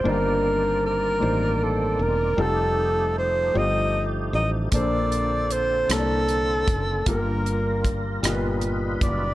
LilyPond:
<<
  \new Staff \with { instrumentName = "Alto saxophone" } { \time 6/8 \key bes \major \tempo 4. = 51 bes'4 bes'4 a'8 bes'8 | a'4 c''8 ees''8 r8 ees''8 | d''4 c''8 a'4. | bes'4 r4. d''8 | }
  \new Staff \with { instrumentName = "Grand piano" } { \time 6/8 \key bes \major <g, bes d' ees' c''>4. <bes d' ees' c''>4. | <g ees' f' a'>4. <g ees' f' c''>4. | <bes, bes d' a' c''>4. <bes d' a' des'' d''>4. | <g, bes f' g' bes'>4. <ais, g dis' f' ais' b'>4. | }
  \new Staff \with { instrumentName = "Tonewheel organ" } { \time 6/8 \key bes \major <ees bes c' a' d''>2. | <f a ees' g'>2. | <d bes c' a'>2. | <g bes f' bes'>4. <g dis' f' ais' b'>4. | }
  \new Staff \with { instrumentName = "Fretless electric bass" } { \clef bass \time 6/8 \key bes \major g,,4. a,,4 e,,8 | f,,4. g,,4 a,,8 | bes,,4. c,4 ges,,8 | g,,4. g,,4 ges,,8 | }
  \new DrumStaff \with { instrumentName = "Drums" } \drummode { \time 6/8 r4. r4. | r4. r4. | <hh bd>8 hh8 hh8 <hh ss>8 hh8 <hh bd>8 | <hh bd>8 hh8 <hh bd>8 <hh ss>8 hh8 <hh bd>8 | }
>>